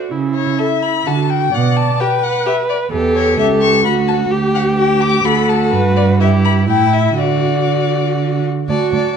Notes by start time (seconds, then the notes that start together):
Already playing: F#4
0.11 C#3 E4
0.35 C#5
0.58 A4 E5
0.83 B5
1.06 D3 F#4 A5
1.30 G5
1.53 B2 D5 F#5
1.77 A5
2.00 G4 B4 G5
2.23 F#5
2.46 G4 E5
2.69 D5
2.92 E2 G4 A4
3.16 C#5
3.37 C#2 G4 A4 E5
3.61 C#6
3.84 D2 F#4 B5
4.08 A5
4.31 D2 G4
4.55 F#5
4.78 G4 G5
5.01 D6
5.24 D2 F#4 A4 B5
5.49 A5
5.72 G2 B4
5.96 D5
6.20 E4 G4 E5
6.45 B5
6.68 A2 E4 G5
6.93 E5
7.18 D3 F#4 D5
8.69 D2 F#4 D5 A5
8.93 D2 D5 A5